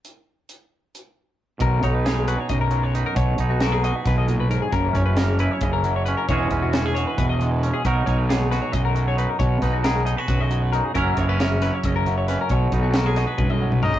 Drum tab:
HH |x---x---x-----|x-x-x-x-x-x-x-|x-x-x-x-x-x-x-|x-x-x-x-x-x-x-|
SD |--------------|----o---------|----o---o-----|----o---------|
T1 |--------------|--------------|--------------|--------------|
T2 |--------------|--------------|--------------|--------------|
FT |--------------|--------------|--------------|--------------|
BD |--------------|o-o-----o-----|o-o-----o-----|o-o-----o-----|

HH |x-x-x-x-x-x-x-|x-x-x-x-x-x-x-|x-x-x-x-x-x-x-|x-x-x-x-x-x-x-|
SD |----o---------|----o-o-------|--o-o---------|----o-o-----o-|
T1 |--------------|--------------|--------------|--------------|
T2 |--------------|--------------|--------------|--------------|
FT |--------------|--------------|--------------|--------------|
BD |o-o-----o-----|o-o-----o-----|o-o-----o-----|o-o-----o-----|

HH |x-x-x-x-------|
SD |----o-o-------|
T1 |--------oo----|
T2 |-----------o--|
FT |------------o-|
BD |o-o-----o----o|